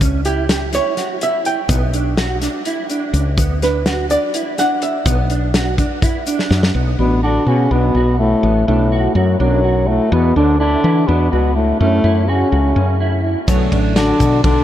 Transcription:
0.01 C#2 C#4, kick, closed hi-hat, shaker
0.25 E4 G4, closed hi-hat
0.49 G4, snare, closed hi-hat, shaker
0.73 E4 C#5, snare, closed hi-hat, shaker
0.97 F#4, snare, closed hi-hat
1.21 E4 E5, closed hi-hat, shaker
1.45 G5, closed hi-hat
1.69 B1 B3, kick, closed hi-hat, shaker
1.93 D4, closed hi-hat
2.17 F#4, snare, closed hi-hat, shaker
2.41 D4, snare, closed hi-hat, shaker
2.65 E4, closed hi-hat
2.90 D4, closed hi-hat, shaker
3.13 C#2, closed hi-hat
3.37 D2 B3, kick, closed hi-hat, shaker
3.62 D4 B4, snare, closed hi-hat
3.86 F#4, snare, closed hi-hat, shaker
4.10 D4 D5, closed hi-hat, shaker
4.34 E4, closed hi-hat
4.58 D4 F#5, snare, closed hi-hat, shaker
4.82 E5, closed hi-hat
5.06 B1 B3, kick, closed hi-hat, shaker
5.30 D4, closed hi-hat
5.54 F#4, snare, closed hi-hat
5.78 D4, kick, closed hi-hat
6.02 E4, kick, closed hi-hat
6.27 D4, closed hi-hat, shaker
6.39 snare
6.50 F#2, snare, shaker
6.63 snare
6.75 B1 B3
6.99 A1 B2 B3 D4
7.23 D3 D4 F#4
7.46 B2 C#3 C#4 F#4
7.71 B1 B2 B3 D4
7.95 B1 F#4
8.19 A2 A3
8.43 A1 B3
8.68 B1 A2 A3 D4
8.92 F#4
9.15 F#2 F#3 F#4
9.39 B1 F#2 F#3 D4
9.64 F#4
9.87 A2 A3
10.11 E2 B2 B3
10.36 D2 D3 D4
10.59 D3 D4 E4
10.84 E3 E4
11.07 E2 B2 B3 D4
11.31 C#2 B2 B3 F#4
11.56 A2 A3
11.80 F#2 A2 A3 C#4
12.04 F#2 E4
12.28 C#3 C#4 F#4
12.52 C#2 F#4
12.76 F#2 C#4
13.00 E4
13.48 B1 D3 F#3 A3 B3 C#5, kick, ride, shaker
13.72 A1 D4, kick, ride
13.96 D3 D4 F#4, snare, ride, shaker
14.20 B2 F#4, kick, ride, shaker
14.43 B1 D3 D4, kick, ride

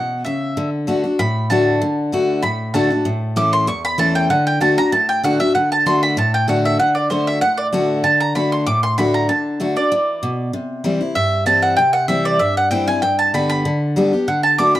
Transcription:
Already playing: B2 F#5
0.25 C#3 E5
0.57 D3
0.87 D3 A3 D4 F#4
1.04 D4 F#4
1.19 A2 B5
1.50 D3 A3 D4 F#4 A5
1.81 D3
2.12 D3 A3 D4 F#4
2.42 A2 B5
2.74 D3 A3 D4 F#4 A5
2.90 D4 F#4
3.05 A2
3.36 E3 A3 C#4 E4 D6
3.53 C6
3.67 E2 C#6
3.85 B5
3.98 E3 A3 C#4 E4 A5
4.15 G5
4.30 D3 F#5
4.47 G5
4.60 D3 A3 D4 F#4 A5
4.77 D4 F#4 A#5
4.92 A2 A5
5.09 G5
5.24 D3 A3 D4 F#4 F#5
5.40 D4 F#4 E5
5.55 D3 F#5
5.72 A5
5.86 D3 A3 D4 F#4 C6
6.03 B5
6.17 A2 A5
6.34 G5
6.48 D3 A3 D4 F#4 F#5
6.65 E5
6.79 D3 F#5
6.95 D5
7.10 D3 A3 D4 F#4 C5
7.27 E5
7.41 A2 F#5
7.58 D5
7.72 D3 A3 D4 F#4
8.04 D3 A5
8.20 A#5
8.35 D3 A3 D4 F#4 B5
8.52 C6
8.66 A2 D6
8.83 C6
8.98 D3 A3 D4 F#4 B5
9.14 A#5
9.29 D3 A5
9.60 D3 A3 D4 F#4
9.76 D4 F#4 D5
9.92 E3
10.23 B2
10.53 C3
10.84 E3 G3 C4 E4
11.01 C4 E4
11.15 G2 E5
11.46 E3 G3 C4 E4 A5
11.62 F#5
11.77 C3 G5
11.93 F#5
12.08 E3 G3 C4 E4 E5
12.25 D5
12.39 G2 E5
12.57 F#5
12.71 E3 G3 C4 E4 G5
12.88 C4 E4 G#5
13.02 G2 G5
13.19 A5
13.34 D3 G3 B3 G4 B5
13.50 B5
13.65 D3
13.96 D3 G3 B3 G4
14.13 B3 G4
14.28 D3 F#5
14.43 A5
14.58 D3 A3 D4 F#4 D6
14.75 D4 F#4 B5

